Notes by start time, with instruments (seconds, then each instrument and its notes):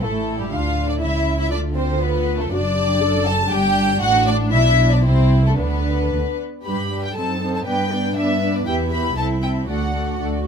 0.01 double bass section A1, cello section A2, violin section A3 A4, viola section E4
0.39 cello section G2, violin section G3 G4
0.51 double bass section D2, cello section D3, viola section D4, violin section F4 F5
0.88 violin section D4 D5
1.01 double bass section C#2, cello section C#3, violin section E4 E5, viola section E4
1.39 violin section E4 E5
1.50 double bass section D2, cello section D3, violin section D4 D5, viola section F4
1.74 violin section C4 C5
1.99 violin section B3 B4
2.39 violin section A3 A4
2.52 double bass section F#1, cello section F#2, violin section D4 D5, viola section F#4
2.78 viola section G4
3.03 viola section A4
3.26 violin section A4 A5
3.51 double bass section G1, cello section G2, viola section D4, violin section G4 G5
4.02 double bass section A1, cello section A2, violin section F#4 F#5
4.27 violin section D4 D5
4.53 double bass section B1, cello section B2, violin section E4 E5
4.92 violin section D4 D5
5.04 double bass section C2, cello section C3, violin section C4 C5, viola section E4
5.44 violin section A3 A4
5.58 double bass section D2, cello section D3, violin section B3 B4, viola section D4
6.12 double bass section D2, cello section D3
6.64 double bass section G2, viola section G3 D4, violin section G4 B4 B5, cello section G4
6.91 viola section G3 D4, violin section G4 B4
7.05 violin section G5
7.16 double bass section F#2, viola section C4 D#4, violin section A4 C5 A5, cello section A4
7.40 viola section C4 D#4, violin section A4 C5
7.56 violin section A5
7.66 double bass section G2, viola section B3 D4, violin section B4 D5 G5, cello section B4
7.91 viola section B3 D4, cello section D4, violin section B4 D5
8.15 double bass section G2, viola section B3 D4, violin section B4 D5 E5
8.41 viola section B3 D4, violin section B4 D5
8.55 violin section D5
8.66 double bass section E2, viola section B3 G4, cello section E4, violin section B4 E5 G5
8.92 viola section B3 G4, violin section B4 E5 B5
9.16 double bass section C2, viola section C4 E4, cello section E4, violin section A4 E5 A5
9.40 viola section C4 E4, violin section A4 E5 G5
9.67 double bass section D2, viola section A3 D4, cello section F#4, violin section A4 D5 F#5
9.94 viola section A3 D4, violin section A4 D5
10.20 double bass section D2, viola section A3 D4, violin section A4 D5